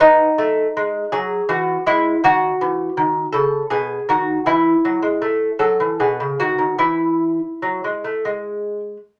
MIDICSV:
0, 0, Header, 1, 2, 480
1, 0, Start_track
1, 0, Key_signature, 4, "major"
1, 0, Tempo, 740741
1, 26, Time_signature, 3, 2, 24, 8
1, 3386, Tempo, 787402
1, 4346, Tempo, 811908
1, 5762, End_track
2, 0, Start_track
2, 0, Title_t, "Lute"
2, 0, Program_c, 0, 24
2, 0, Note_on_c, 0, 59, 65
2, 4, Note_on_c, 0, 63, 88
2, 183, Note_off_c, 0, 59, 0
2, 248, Note_on_c, 0, 57, 62
2, 427, Note_off_c, 0, 57, 0
2, 497, Note_on_c, 0, 56, 56
2, 673, Note_off_c, 0, 56, 0
2, 709, Note_off_c, 0, 63, 0
2, 726, Note_on_c, 0, 68, 75
2, 730, Note_on_c, 0, 54, 61
2, 908, Note_off_c, 0, 54, 0
2, 964, Note_on_c, 0, 52, 63
2, 965, Note_off_c, 0, 68, 0
2, 966, Note_on_c, 0, 66, 58
2, 1144, Note_off_c, 0, 52, 0
2, 1203, Note_off_c, 0, 66, 0
2, 1208, Note_on_c, 0, 56, 60
2, 1211, Note_on_c, 0, 64, 72
2, 1386, Note_off_c, 0, 56, 0
2, 1447, Note_off_c, 0, 64, 0
2, 1449, Note_on_c, 0, 51, 65
2, 1454, Note_on_c, 0, 66, 81
2, 1627, Note_off_c, 0, 51, 0
2, 1693, Note_on_c, 0, 52, 56
2, 1869, Note_off_c, 0, 52, 0
2, 1925, Note_on_c, 0, 51, 57
2, 2105, Note_off_c, 0, 51, 0
2, 2151, Note_off_c, 0, 66, 0
2, 2154, Note_on_c, 0, 69, 69
2, 2162, Note_on_c, 0, 49, 54
2, 2343, Note_off_c, 0, 49, 0
2, 2397, Note_off_c, 0, 69, 0
2, 2399, Note_on_c, 0, 68, 63
2, 2404, Note_on_c, 0, 47, 57
2, 2583, Note_off_c, 0, 47, 0
2, 2641, Note_off_c, 0, 68, 0
2, 2649, Note_on_c, 0, 51, 59
2, 2655, Note_on_c, 0, 66, 67
2, 2828, Note_off_c, 0, 51, 0
2, 2889, Note_off_c, 0, 66, 0
2, 2890, Note_on_c, 0, 52, 63
2, 2895, Note_on_c, 0, 64, 72
2, 3069, Note_off_c, 0, 52, 0
2, 3142, Note_on_c, 0, 54, 57
2, 3253, Note_off_c, 0, 54, 0
2, 3256, Note_on_c, 0, 56, 49
2, 3376, Note_off_c, 0, 56, 0
2, 3380, Note_on_c, 0, 57, 55
2, 3551, Note_off_c, 0, 57, 0
2, 3592, Note_off_c, 0, 64, 0
2, 3609, Note_on_c, 0, 54, 48
2, 3610, Note_on_c, 0, 69, 57
2, 3727, Note_off_c, 0, 54, 0
2, 3737, Note_on_c, 0, 52, 51
2, 3843, Note_off_c, 0, 69, 0
2, 3851, Note_off_c, 0, 52, 0
2, 3857, Note_on_c, 0, 47, 48
2, 3858, Note_on_c, 0, 68, 62
2, 3972, Note_off_c, 0, 47, 0
2, 3981, Note_on_c, 0, 49, 46
2, 4091, Note_off_c, 0, 68, 0
2, 4096, Note_off_c, 0, 49, 0
2, 4100, Note_on_c, 0, 66, 65
2, 4101, Note_on_c, 0, 51, 51
2, 4207, Note_off_c, 0, 51, 0
2, 4214, Note_on_c, 0, 51, 42
2, 4334, Note_off_c, 0, 51, 0
2, 4336, Note_off_c, 0, 66, 0
2, 4336, Note_on_c, 0, 52, 52
2, 4338, Note_on_c, 0, 64, 64
2, 4692, Note_off_c, 0, 52, 0
2, 4832, Note_on_c, 0, 54, 48
2, 4950, Note_off_c, 0, 54, 0
2, 4962, Note_on_c, 0, 56, 43
2, 5074, Note_off_c, 0, 56, 0
2, 5081, Note_on_c, 0, 57, 42
2, 5193, Note_off_c, 0, 57, 0
2, 5203, Note_on_c, 0, 56, 48
2, 5525, Note_off_c, 0, 64, 0
2, 5626, Note_off_c, 0, 56, 0
2, 5762, End_track
0, 0, End_of_file